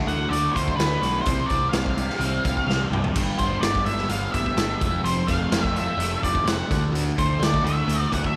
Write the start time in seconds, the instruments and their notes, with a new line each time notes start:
Already playing: distorted electric guitar D3 A3 D4
0.07 picked electric bass D2, distorted electric guitar F#4, lead electric guitar F#5, closed hi-hat
0.29 picked electric bass D2, distorted electric guitar A3, lead electric guitar D5, closed hi-hat
0.51 distorted electric guitar D3, lead electric guitar C5
0.55 picked electric bass D2, kick, closed hi-hat
0.68 kick
0.76 picked electric bass D2, distorted electric guitar D4, lead electric guitar B4, snare, closed hi-hat
1.02 picked electric bass B1, distorted electric guitar F#4, snare, closed hi-hat
1.21 lead electric guitar C5
1.26 picked electric bass C2, distorted electric guitar C3, kick, closed hi-hat
1.46 picked electric bass C2, lead electric guitar D5, closed hi-hat
1.50 distorted electric guitar C4, kick
1.69 picked electric bass C2, lead electric guitar F5, closed hi-hat
1.74 distorted electric guitar D4, snare
1.86 kick
1.98 distorted electric guitar G4, closed hi-hat
2.10 snare
2.19 picked electric bass C2, distorted electric guitar C4, closed hi-hat
2.45 picked electric bass C2, distorted electric guitar G3, kick, closed hi-hat
2.57 kick
2.67 picked electric bass C2, distorted electric guitar D4, snare
2.90 picked electric bass C2, distorted electric guitar G4, mid tom
3.04 floor tom
3.15 picked electric bass G1, distorted electric guitar G2, kick, closed hi-hat, crash
3.39 picked electric bass G1, distorted electric guitar B3, lead electric guitar C5, kick, closed hi-hat
3.61 picked electric bass G1, distorted electric guitar D4, lead electric guitar D5, snare, closed hi-hat
3.75 kick
3.85 picked electric bass G1, distorted electric guitar G4, lead electric guitar E5, closed hi-hat
3.98 snare
4.09 picked electric bass G1, distorted electric guitar B3, lead electric guitar F5, closed hi-hat
4.32 picked electric bass G1, distorted electric guitar G3, lead electric guitar E5, kick, closed hi-hat
4.46 kick
4.56 picked electric bass G1, distorted electric guitar D4, snare, closed hi-hat
4.80 picked electric bass F1, distorted electric guitar F2, kick, closed hi-hat
5.03 picked electric bass F1, distorted electric guitar F2, lead electric guitar C5, closed hi-hat
5.27 picked electric bass F1, distorted electric guitar A3, lead electric guitar F5, kick, snare, closed hi-hat
5.51 picked electric bass F1, distorted electric guitar C4, snare, closed hi-hat
5.64 lead electric guitar E5, kick
5.74 distorted electric guitar F4, lead electric guitar E5, closed hi-hat
5.97 picked electric bass F1, distorted electric guitar A3, closed hi-hat
6.21 picked electric bass F1, distorted electric guitar F3, lead electric guitar D5, kick, closed hi-hat
6.35 kick
6.44 picked electric bass F1, distorted electric guitar C4, snare, closed hi-hat
6.48 lead electric guitar F#5
6.68 picked electric bass D2, distorted electric guitar D3, kick, snare, closed hi-hat
6.92 picked electric bass D2, distorted electric guitar D3, closed hi-hat
7.17 picked electric bass D2, distorted electric guitar A3, lead electric guitar C5, kick, closed hi-hat
7.39 picked electric bass D2, distorted electric guitar D4, snare, closed hi-hat
7.44 lead electric guitar D5
7.54 kick
7.63 picked electric bass D2, distorted electric guitar F#4, lead electric guitar E5, closed hi-hat
7.87 picked electric bass D2, distorted electric guitar A3, closed hi-hat
8.12 picked electric bass D2, distorted electric guitar D3, lead electric guitar F#5, kick, closed hi-hat
8.24 lead electric guitar E5, kick